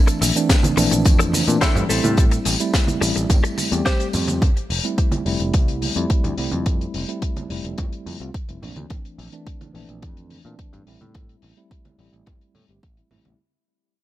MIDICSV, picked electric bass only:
0, 0, Header, 1, 2, 480
1, 0, Start_track
1, 0, Tempo, 560748
1, 1863, Time_signature, 4, 2, 24, 8
1, 12012, End_track
2, 0, Start_track
2, 0, Title_t, "Picked electric bass"
2, 0, Program_c, 0, 34
2, 184, Note_on_c, 0, 34, 95
2, 259, Note_off_c, 0, 34, 0
2, 663, Note_on_c, 0, 34, 95
2, 738, Note_off_c, 0, 34, 0
2, 785, Note_on_c, 0, 34, 95
2, 903, Note_on_c, 0, 41, 69
2, 915, Note_off_c, 0, 34, 0
2, 1191, Note_off_c, 0, 41, 0
2, 1265, Note_on_c, 0, 46, 74
2, 1338, Note_off_c, 0, 46, 0
2, 1506, Note_on_c, 0, 43, 89
2, 1579, Note_off_c, 0, 43, 0
2, 1625, Note_on_c, 0, 33, 90
2, 1699, Note_off_c, 0, 33, 0
2, 1746, Note_on_c, 0, 45, 93
2, 2032, Note_off_c, 0, 45, 0
2, 2105, Note_on_c, 0, 33, 93
2, 2179, Note_off_c, 0, 33, 0
2, 2584, Note_on_c, 0, 33, 97
2, 2659, Note_off_c, 0, 33, 0
2, 2704, Note_on_c, 0, 33, 93
2, 2778, Note_off_c, 0, 33, 0
2, 3185, Note_on_c, 0, 40, 94
2, 3258, Note_off_c, 0, 40, 0
2, 3543, Note_on_c, 0, 41, 91
2, 3831, Note_off_c, 0, 41, 0
2, 4023, Note_on_c, 0, 29, 90
2, 4098, Note_off_c, 0, 29, 0
2, 4502, Note_on_c, 0, 29, 95
2, 4578, Note_off_c, 0, 29, 0
2, 4623, Note_on_c, 0, 29, 90
2, 4741, Note_on_c, 0, 36, 73
2, 4754, Note_off_c, 0, 29, 0
2, 5030, Note_off_c, 0, 36, 0
2, 5103, Note_on_c, 0, 41, 75
2, 5177, Note_off_c, 0, 41, 0
2, 5342, Note_on_c, 0, 38, 81
2, 5417, Note_off_c, 0, 38, 0
2, 5463, Note_on_c, 0, 36, 85
2, 5538, Note_off_c, 0, 36, 0
2, 5584, Note_on_c, 0, 41, 89
2, 5871, Note_off_c, 0, 41, 0
2, 5943, Note_on_c, 0, 29, 92
2, 6019, Note_off_c, 0, 29, 0
2, 6422, Note_on_c, 0, 29, 98
2, 6498, Note_off_c, 0, 29, 0
2, 6544, Note_on_c, 0, 29, 91
2, 6618, Note_off_c, 0, 29, 0
2, 6903, Note_on_c, 0, 41, 75
2, 6978, Note_off_c, 0, 41, 0
2, 7022, Note_on_c, 0, 36, 77
2, 7097, Note_off_c, 0, 36, 0
2, 7264, Note_on_c, 0, 29, 76
2, 7338, Note_off_c, 0, 29, 0
2, 7382, Note_on_c, 0, 34, 80
2, 7458, Note_off_c, 0, 34, 0
2, 7502, Note_on_c, 0, 38, 81
2, 7577, Note_off_c, 0, 38, 0
2, 7861, Note_on_c, 0, 34, 92
2, 7938, Note_off_c, 0, 34, 0
2, 8342, Note_on_c, 0, 34, 96
2, 8418, Note_off_c, 0, 34, 0
2, 8463, Note_on_c, 0, 34, 91
2, 8583, Note_on_c, 0, 41, 69
2, 8596, Note_off_c, 0, 34, 0
2, 8871, Note_off_c, 0, 41, 0
2, 8944, Note_on_c, 0, 46, 74
2, 9018, Note_off_c, 0, 46, 0
2, 9184, Note_on_c, 0, 43, 77
2, 9258, Note_off_c, 0, 43, 0
2, 9304, Note_on_c, 0, 33, 82
2, 9379, Note_off_c, 0, 33, 0
2, 9425, Note_on_c, 0, 45, 86
2, 9711, Note_off_c, 0, 45, 0
2, 9783, Note_on_c, 0, 33, 92
2, 9858, Note_off_c, 0, 33, 0
2, 10262, Note_on_c, 0, 33, 90
2, 10338, Note_off_c, 0, 33, 0
2, 10381, Note_on_c, 0, 33, 88
2, 10456, Note_off_c, 0, 33, 0
2, 10741, Note_on_c, 0, 45, 72
2, 10818, Note_off_c, 0, 45, 0
2, 10862, Note_on_c, 0, 31, 73
2, 10937, Note_off_c, 0, 31, 0
2, 10983, Note_on_c, 0, 33, 79
2, 11134, Note_off_c, 0, 33, 0
2, 11221, Note_on_c, 0, 33, 81
2, 11298, Note_off_c, 0, 33, 0
2, 11342, Note_on_c, 0, 33, 75
2, 11417, Note_off_c, 0, 33, 0
2, 12012, End_track
0, 0, End_of_file